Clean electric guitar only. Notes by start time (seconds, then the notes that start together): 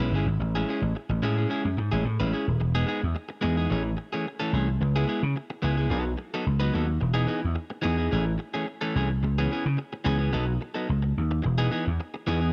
0.00 G#3 C#4 E4 B4
0.13 G#3 C#4 E4 G#4
0.28 muted clean electric guitar stroke
0.41 muted clean electric guitar stroke
0.55 G#3 C#4 E4 G#4
0.69 G#3 C#4 E4 G#4
0.83 muted clean electric guitar stroke
0.95 muted clean electric guitar stroke
1.10 muted clean electric guitar stroke
1.22 G#3 C#4 E4 G#4
1.37 G#3 C#4 E4 G#4
1.49 G#3 C#4 E4 G#4
1.65 muted clean electric guitar stroke
1.77 muted clean electric guitar stroke
1.92 G#3 C#4 E4 G#4
2.05 muted clean electric guitar stroke
2.20 G#3 C#4 E4 B4
2.32 G#3 C#4 E4 G#4
2.48 muted clean electric guitar stroke
2.60 muted clean electric guitar stroke
2.75 G#3 B3 D#4 G#4
2.86 G#3 B3 D#4 G#4
3.02 muted clean electric guitar stroke
3.15 muted clean electric guitar stroke
3.29 muted clean electric guitar stroke
3.41 G#3 B3 D#4 G#4
3.57 G#3 B3 D#4 G#4
3.70 E3 A3 C#4 G#4
3.84 muted clean electric guitar stroke
3.97 muted clean electric guitar stroke
4.13 E3 A3 C#4 G#4
4.27 muted clean electric guitar stroke
4.40 E3 A3 C#4 A4
4.53 E3 A3 C#4 G#4
4.69 muted clean electric guitar stroke
4.82 muted clean electric guitar stroke
4.96 G#3 B3 E4 G#4
5.07 G#3 B3 E4 G#4
5.23 muted clean electric guitar stroke
5.36 muted clean electric guitar stroke
5.50 muted clean electric guitar stroke
5.62 G#3 B3 E4 G#4
5.77 G#3 B3 E4 G#4
5.89 F#3 B3 D#4 A4
6.05 muted clean electric guitar stroke
6.18 muted clean electric guitar stroke
6.34 F#3 B3 D#4 A4
6.60 F#3 B3 D#4 B4
6.73 F#3 B3 D#4 A4
6.87 muted clean electric guitar stroke
7.01 muted clean electric guitar stroke
7.14 E3 B3 D#4 G#4
7.27 E3 B3 D#4 G#4
7.42 muted clean electric guitar stroke
7.55 muted clean electric guitar stroke
7.70 muted clean electric guitar stroke
7.82 E3 B3 D#4 G#4
7.97 E3 B3 D#4 G#4
8.11 E3 A3 C#4 G#4
8.26 muted clean electric guitar stroke
8.38 muted clean electric guitar stroke
8.54 E3 A3 C#4 G#4
8.66 muted clean electric guitar stroke
8.81 E3 A3 C#4 A4
8.95 E3 A3 C#4 G#4
9.10 muted clean electric guitar stroke
9.23 muted clean electric guitar stroke
9.38 E3 B3 C#4 G#4
9.51 E3 B3 C#4 G#4
9.66 muted clean electric guitar stroke
9.77 muted clean electric guitar stroke
9.93 muted clean electric guitar stroke
10.04 E3 B3 C#4 G#4
10.19 E3 B3 C#4 G#4
10.33 F#3 B3 D#4 A4
10.47 muted clean electric guitar stroke
10.61 muted clean electric guitar stroke
10.74 F#3 B3 D#4 A4
10.89 muted clean electric guitar stroke
11.02 muted clean electric guitar stroke
11.31 muted clean electric guitar stroke
11.43 muted clean electric guitar stroke
11.58 E3 B3 D#4 G#4
11.71 E3 B3 D#4 G#4
11.86 muted clean electric guitar stroke
12.00 muted clean electric guitar stroke
12.14 muted clean electric guitar stroke
12.27 E3 B3 D#4 G#4
12.40 E3 B3 D#4 G#4